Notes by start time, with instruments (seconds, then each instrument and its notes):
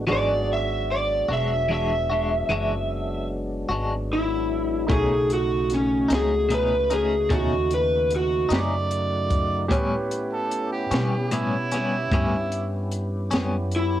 0.07 upright bass G#1, clean electric guitar E3 G#3 D4 F#4, tonewheel organ F#3 G#3 B3 D4, grand piano F#4 G#4 D5
0.13 electric slide guitar D5
0.53 electric slide guitar E5
0.91 electric slide guitar D5
1.28 upright bass E1, clean electric guitar G#3 D4 F#4
1.33 electric slide guitar E5
1.69 clean electric guitar E3 G#3 D4 F#4
1.73 electric slide guitar E5
2.10 clean electric guitar G#3 D4 F#4
2.49 upright bass F#1, clean electric guitar E3 G#3 D4 F#4
3.69 upright bass G#1, clean electric guitar G#3 D4 F#4
4.13 electric slide guitar E4
4.87 upright bass B1, clean electric guitar B2 A3 C#4, tonewheel organ C#3 A3 D#4 F#4, grand piano A3 D#4 C#6, kick, closed hi-hat
4.91 clean electric guitar D#4, electric slide guitar G#4
5.30 electric slide guitar F#4, closed hi-hat
5.70 snare, closed hi-hat
5.74 electric slide guitar C#4
6.08 upright bass C#2, clean electric guitar A3 C#4 D#4, closed hi-hat
6.13 electric slide guitar G#4, snare
6.49 clean electric guitar B2 A3 C#4 D#4, closed hi-hat
6.54 electric slide guitar B4
6.90 clean electric guitar A3 C#4 D#4, electric slide guitar G#4, closed hi-hat
7.29 upright bass D#2, clean electric guitar B2 A3 C#4 D#4, kick, closed hi-hat
7.34 electric slide guitar F#4
7.71 electric slide guitar B4, closed hi-hat
8.10 closed hi-hat
8.16 electric slide guitar F#4
8.49 upright bass F#2, clean electric guitar A3 C#4 D#4, harmonica G4 B4 D5, closed hi-hat
8.53 snare
8.91 closed hi-hat
9.30 kick, closed hi-hat
9.68 clean electric guitar A2 G3 B3 C#4, upright bass A2, tonewheel organ B3 C#4 E4 G4, grand piano G4 B4 C#5, kick, closed hi-hat
10.11 closed hi-hat
10.33 harmonica A4
10.51 closed hi-hat
10.73 harmonica G4
10.91 upright bass B2, clean electric guitar G3 B3 C#4, snare, closed hi-hat
11.31 clean electric guitar A2 G3 B3 C#4, harmonica E4, closed hi-hat
11.72 clean electric guitar G3 B3 C#4, snare, closed hi-hat
12.12 upright bass G2, clean electric guitar A2 G3 B3 C#4, kick, closed hi-hat
12.52 closed hi-hat
12.92 closed hi-hat
13.31 upright bass F#2, clean electric guitar G3 B3 C#4, snare, closed hi-hat
13.71 closed hi-hat
13.76 electric slide guitar E4